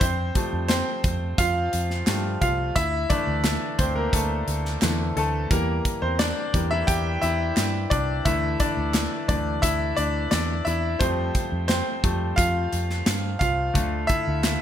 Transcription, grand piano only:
0.00 C4 C5
0.35 F3 G3 A3
0.68 C4 C5
1.38 F4 F5
2.08 F3 G3 A3
2.41 F4 F5
2.76 E4 E5
3.10 D3 E3 A3 D4 D5
3.78 C4 C5
3.96 A#3 A#4
4.13 A3 A4
4.83 D3 E3 A3
5.17 A3 A4
5.51 E3 G3 A#3 A#4
6.02 C4 C5
6.19 D4 D5
6.54 E3 G3 A#3
6.71 E4 E5
6.87 G4 G5
7.22 E4 E5
7.90 D4 D5
8.25 D3 E3 A3 E4 E5
8.60 D4 D5
9.28 D3 E3 A3 D4 D5
9.62 E4 E5
9.96 D4 D5
10.31 D4 D5
10.65 E4 E5
10.99 F3 G3 A3 C4 C5
11.68 C4 C5
12.03 F3 G3 A3
12.36 F4 F5
13.39 F4 F5
13.74 D3 A3
14.07 E4 E5

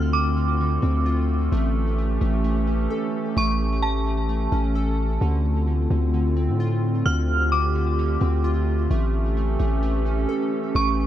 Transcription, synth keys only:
Already playing: D3 C4 F4
0.13 D3
0.37 D3
0.60 D3
0.82 C4
1.06 F4
1.52 A3
1.98 A3
2.21 A3
2.44 A3
2.67 C#4
2.90 A4
3.37 A3
3.83 A3
4.06 A3
4.29 A3
4.52 C#4
4.75 A4
5.22 D3
5.67 D3
5.91 D3
6.14 D3
6.37 C4
6.60 F4
7.06 D3
7.52 D3
7.75 D3
7.99 D3
8.21 C4
8.44 F4
8.91 A3
9.37 A3
9.59 A3
9.83 A3
10.05 C#4
10.29 A4
10.75 A3

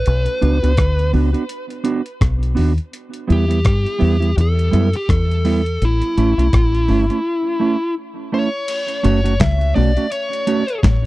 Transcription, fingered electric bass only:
0.07 B1
0.43 C#2
0.63 C#2
0.78 D2
1.14 C#2
2.22 B1
2.58 D#2
3.30 E2
3.65 G2
4.02 E2
4.37 E2
4.74 F#2
5.10 E2
5.82 A1
6.18 A1
6.38 B1
6.54 A1
6.90 G1
9.05 F#1
9.41 C#2
9.77 B1
10.84 A1

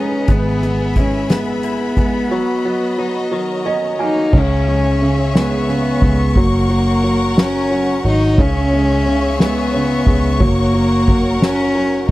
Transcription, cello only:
Already playing: C#4
0.32 B3
0.98 C#4
1.32 B3
4.03 D#4
4.38 C#4
5.38 B3
6.39 A#3
7.40 C#4
8.08 D#4
8.41 C#4
9.42 B3
10.42 A#3
11.43 C#4

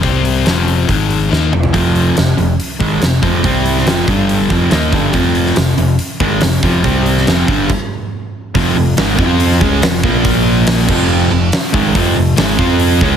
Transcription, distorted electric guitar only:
0.02 C3 G3 C4
0.45 F2 C3 F3
0.88 G#2 D#3 G#3
1.30 D#3 A#3 D#4
1.53 F2 C3
1.73 F2 C3 F3
2.16 F2 C3
2.37 F2 C3
2.79 G#2 D#3 G#3
3.01 F2 C3
3.22 F2 C3 F3
3.44 C3 G3 C4
3.87 F2 C3 F3
4.08 G2 D3 G3
4.50 F2 C3 F3
4.71 D#3 A#3 D#4
4.93 G2 D3 G3
5.14 F2 C3 F3
5.56 F2 C3
5.78 F2 C3
6.20 G#2 D#3 G#3
6.42 F2 C3
6.63 F2 C3 F3
6.84 C3 G3 C4
7.27 F2 C3 F3
7.47 G2 D3 G3
8.55 F2 C3 F3
8.77 F2 C3
8.97 G#2 D#3 G#3
9.19 F3 C4 F4
9.61 C#3 G#3 C#4
9.83 F2 C3
10.03 A#2 F3 A#3
10.88 F2 C3 F3
11.31 F2 C3
11.73 G#2 D#3 G#3
11.95 F2 C3 F3
12.16 F2 C3
12.36 G#2 D#3 G#3
12.57 F3 C4 F4
13.02 C#3 G#3 C#4

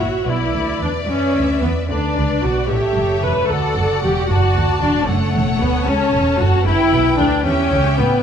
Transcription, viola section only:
0.00 F#4
0.28 E4
0.82 D4
1.08 C#4
1.62 B3
1.89 D4
2.43 F#4
2.69 G4
3.23 B4
3.49 A4
4.02 G4
4.29 F#4
4.82 D4
5.07 A3
5.61 B3
5.86 C#4
6.39 F#4
6.67 E4
7.17 D4
7.44 C#4
7.98 B3

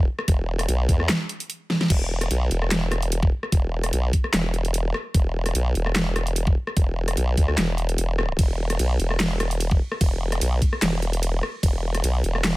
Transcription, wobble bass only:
0.28 E1
0.68 B1
0.89 E2
1.90 E1
2.31 B1
2.51 E1
3.52 E1
3.93 B1
4.33 E1
5.15 E1
5.55 B1
5.75 E1
6.77 E1
7.17 B1
7.37 D2
7.58 E1
7.98 E1
8.39 E1
8.79 B1
9.00 E1
10.01 E1
10.41 B1
10.82 E1
11.63 E1
12.04 B1
12.24 E1

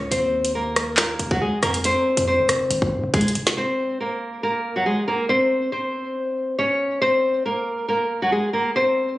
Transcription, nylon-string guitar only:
0.11 C4 C5
0.55 A#3 A#4
0.98 A#3 A#4
1.31 F#3 F#4
1.41 G#3 G#4
1.63 A#3 A#4
1.85 C4 C5
2.27 C4 C5
3.14 G#3 G#4
3.57 C4 C5
4.00 A#3 A#4
4.43 A#3 A#4
4.76 F#3 F#4
4.86 G#3 G#4
5.08 A#3 A#4
5.29 C4 C5
5.72 C4 C5
6.59 C#4 C#5
7.02 C4 C5
7.46 A#3 A#4
7.88 A#3 A#4
8.22 F#3 F#4
8.32 G#3 G#4
8.53 A#3 A#4
8.76 C4 C5

